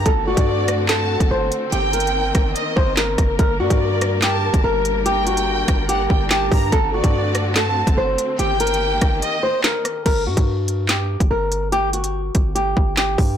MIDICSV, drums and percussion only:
0, 0, Header, 1, 2, 480
1, 0, Start_track
1, 0, Key_signature, -2, "minor"
1, 0, Tempo, 416667
1, 66, Time_signature, 4, 2, 24, 8
1, 15406, End_track
2, 0, Start_track
2, 0, Title_t, "Drums"
2, 65, Note_on_c, 9, 42, 79
2, 66, Note_on_c, 9, 36, 114
2, 181, Note_off_c, 9, 36, 0
2, 181, Note_off_c, 9, 42, 0
2, 426, Note_on_c, 9, 36, 94
2, 427, Note_on_c, 9, 42, 79
2, 541, Note_off_c, 9, 36, 0
2, 542, Note_off_c, 9, 42, 0
2, 784, Note_on_c, 9, 42, 80
2, 787, Note_on_c, 9, 37, 100
2, 899, Note_off_c, 9, 42, 0
2, 902, Note_off_c, 9, 37, 0
2, 1024, Note_on_c, 9, 39, 97
2, 1025, Note_on_c, 9, 38, 119
2, 1025, Note_on_c, 9, 42, 84
2, 1139, Note_off_c, 9, 39, 0
2, 1140, Note_off_c, 9, 42, 0
2, 1141, Note_off_c, 9, 38, 0
2, 1386, Note_on_c, 9, 36, 95
2, 1389, Note_on_c, 9, 42, 76
2, 1502, Note_off_c, 9, 36, 0
2, 1504, Note_off_c, 9, 42, 0
2, 1747, Note_on_c, 9, 42, 82
2, 1862, Note_off_c, 9, 42, 0
2, 1986, Note_on_c, 9, 42, 79
2, 2101, Note_off_c, 9, 42, 0
2, 2226, Note_on_c, 9, 42, 79
2, 2306, Note_off_c, 9, 42, 0
2, 2306, Note_on_c, 9, 42, 62
2, 2386, Note_off_c, 9, 42, 0
2, 2386, Note_on_c, 9, 42, 49
2, 2501, Note_off_c, 9, 42, 0
2, 2704, Note_on_c, 9, 42, 80
2, 2705, Note_on_c, 9, 36, 96
2, 2707, Note_on_c, 9, 37, 99
2, 2819, Note_off_c, 9, 42, 0
2, 2821, Note_off_c, 9, 36, 0
2, 2822, Note_off_c, 9, 37, 0
2, 2945, Note_on_c, 9, 42, 81
2, 3060, Note_off_c, 9, 42, 0
2, 3187, Note_on_c, 9, 36, 87
2, 3302, Note_off_c, 9, 36, 0
2, 3423, Note_on_c, 9, 39, 88
2, 3425, Note_on_c, 9, 38, 107
2, 3539, Note_off_c, 9, 39, 0
2, 3540, Note_off_c, 9, 38, 0
2, 3666, Note_on_c, 9, 36, 104
2, 3666, Note_on_c, 9, 37, 91
2, 3666, Note_on_c, 9, 42, 78
2, 3781, Note_off_c, 9, 36, 0
2, 3781, Note_off_c, 9, 37, 0
2, 3781, Note_off_c, 9, 42, 0
2, 3906, Note_on_c, 9, 36, 113
2, 3906, Note_on_c, 9, 42, 77
2, 4021, Note_off_c, 9, 36, 0
2, 4021, Note_off_c, 9, 42, 0
2, 4266, Note_on_c, 9, 36, 93
2, 4268, Note_on_c, 9, 42, 81
2, 4382, Note_off_c, 9, 36, 0
2, 4383, Note_off_c, 9, 42, 0
2, 4624, Note_on_c, 9, 42, 83
2, 4627, Note_on_c, 9, 37, 98
2, 4739, Note_off_c, 9, 42, 0
2, 4742, Note_off_c, 9, 37, 0
2, 4864, Note_on_c, 9, 39, 93
2, 4865, Note_on_c, 9, 42, 83
2, 4866, Note_on_c, 9, 38, 122
2, 4979, Note_off_c, 9, 39, 0
2, 4981, Note_off_c, 9, 38, 0
2, 4981, Note_off_c, 9, 42, 0
2, 5226, Note_on_c, 9, 36, 94
2, 5229, Note_on_c, 9, 42, 75
2, 5342, Note_off_c, 9, 36, 0
2, 5344, Note_off_c, 9, 42, 0
2, 5588, Note_on_c, 9, 42, 79
2, 5703, Note_off_c, 9, 42, 0
2, 5826, Note_on_c, 9, 42, 81
2, 5942, Note_off_c, 9, 42, 0
2, 6067, Note_on_c, 9, 42, 78
2, 6182, Note_off_c, 9, 42, 0
2, 6188, Note_on_c, 9, 42, 78
2, 6304, Note_off_c, 9, 42, 0
2, 6544, Note_on_c, 9, 42, 81
2, 6546, Note_on_c, 9, 36, 90
2, 6547, Note_on_c, 9, 37, 97
2, 6659, Note_off_c, 9, 42, 0
2, 6661, Note_off_c, 9, 36, 0
2, 6662, Note_off_c, 9, 37, 0
2, 6785, Note_on_c, 9, 42, 84
2, 6900, Note_off_c, 9, 42, 0
2, 7027, Note_on_c, 9, 36, 86
2, 7143, Note_off_c, 9, 36, 0
2, 7264, Note_on_c, 9, 39, 87
2, 7266, Note_on_c, 9, 38, 112
2, 7380, Note_off_c, 9, 39, 0
2, 7381, Note_off_c, 9, 38, 0
2, 7506, Note_on_c, 9, 36, 105
2, 7507, Note_on_c, 9, 46, 60
2, 7621, Note_off_c, 9, 36, 0
2, 7622, Note_off_c, 9, 46, 0
2, 7746, Note_on_c, 9, 36, 115
2, 7746, Note_on_c, 9, 42, 79
2, 7861, Note_off_c, 9, 36, 0
2, 7861, Note_off_c, 9, 42, 0
2, 8107, Note_on_c, 9, 36, 92
2, 8108, Note_on_c, 9, 42, 78
2, 8222, Note_off_c, 9, 36, 0
2, 8223, Note_off_c, 9, 42, 0
2, 8464, Note_on_c, 9, 42, 80
2, 8467, Note_on_c, 9, 37, 99
2, 8579, Note_off_c, 9, 42, 0
2, 8582, Note_off_c, 9, 37, 0
2, 8704, Note_on_c, 9, 39, 93
2, 8705, Note_on_c, 9, 42, 83
2, 8706, Note_on_c, 9, 38, 120
2, 8819, Note_off_c, 9, 39, 0
2, 8820, Note_off_c, 9, 42, 0
2, 8821, Note_off_c, 9, 38, 0
2, 9067, Note_on_c, 9, 36, 96
2, 9069, Note_on_c, 9, 42, 75
2, 9182, Note_off_c, 9, 36, 0
2, 9185, Note_off_c, 9, 42, 0
2, 9428, Note_on_c, 9, 42, 81
2, 9543, Note_off_c, 9, 42, 0
2, 9667, Note_on_c, 9, 42, 77
2, 9782, Note_off_c, 9, 42, 0
2, 9907, Note_on_c, 9, 42, 81
2, 9987, Note_off_c, 9, 42, 0
2, 9987, Note_on_c, 9, 42, 64
2, 10067, Note_off_c, 9, 42, 0
2, 10067, Note_on_c, 9, 42, 48
2, 10182, Note_off_c, 9, 42, 0
2, 10385, Note_on_c, 9, 42, 79
2, 10386, Note_on_c, 9, 36, 97
2, 10387, Note_on_c, 9, 37, 97
2, 10500, Note_off_c, 9, 42, 0
2, 10501, Note_off_c, 9, 36, 0
2, 10503, Note_off_c, 9, 37, 0
2, 10626, Note_on_c, 9, 42, 85
2, 10741, Note_off_c, 9, 42, 0
2, 11105, Note_on_c, 9, 39, 88
2, 11107, Note_on_c, 9, 38, 113
2, 11220, Note_off_c, 9, 39, 0
2, 11222, Note_off_c, 9, 38, 0
2, 11347, Note_on_c, 9, 37, 89
2, 11348, Note_on_c, 9, 42, 81
2, 11462, Note_off_c, 9, 37, 0
2, 11463, Note_off_c, 9, 42, 0
2, 11586, Note_on_c, 9, 36, 111
2, 11586, Note_on_c, 9, 42, 78
2, 11586, Note_on_c, 9, 49, 96
2, 11701, Note_off_c, 9, 42, 0
2, 11702, Note_off_c, 9, 36, 0
2, 11702, Note_off_c, 9, 49, 0
2, 11946, Note_on_c, 9, 36, 89
2, 11947, Note_on_c, 9, 42, 77
2, 12062, Note_off_c, 9, 36, 0
2, 12062, Note_off_c, 9, 42, 0
2, 12304, Note_on_c, 9, 42, 78
2, 12419, Note_off_c, 9, 42, 0
2, 12544, Note_on_c, 9, 39, 94
2, 12545, Note_on_c, 9, 42, 80
2, 12546, Note_on_c, 9, 38, 114
2, 12659, Note_off_c, 9, 39, 0
2, 12660, Note_off_c, 9, 42, 0
2, 12661, Note_off_c, 9, 38, 0
2, 12906, Note_on_c, 9, 36, 93
2, 12909, Note_on_c, 9, 42, 75
2, 13022, Note_off_c, 9, 36, 0
2, 13024, Note_off_c, 9, 42, 0
2, 13267, Note_on_c, 9, 42, 78
2, 13382, Note_off_c, 9, 42, 0
2, 13505, Note_on_c, 9, 42, 78
2, 13621, Note_off_c, 9, 42, 0
2, 13747, Note_on_c, 9, 42, 74
2, 13862, Note_off_c, 9, 42, 0
2, 13868, Note_on_c, 9, 42, 77
2, 13983, Note_off_c, 9, 42, 0
2, 14224, Note_on_c, 9, 42, 77
2, 14226, Note_on_c, 9, 36, 91
2, 14339, Note_off_c, 9, 42, 0
2, 14341, Note_off_c, 9, 36, 0
2, 14465, Note_on_c, 9, 42, 81
2, 14581, Note_off_c, 9, 42, 0
2, 14708, Note_on_c, 9, 36, 84
2, 14823, Note_off_c, 9, 36, 0
2, 14945, Note_on_c, 9, 39, 87
2, 14946, Note_on_c, 9, 38, 107
2, 15060, Note_off_c, 9, 39, 0
2, 15062, Note_off_c, 9, 38, 0
2, 15186, Note_on_c, 9, 36, 99
2, 15187, Note_on_c, 9, 46, 57
2, 15302, Note_off_c, 9, 36, 0
2, 15303, Note_off_c, 9, 46, 0
2, 15406, End_track
0, 0, End_of_file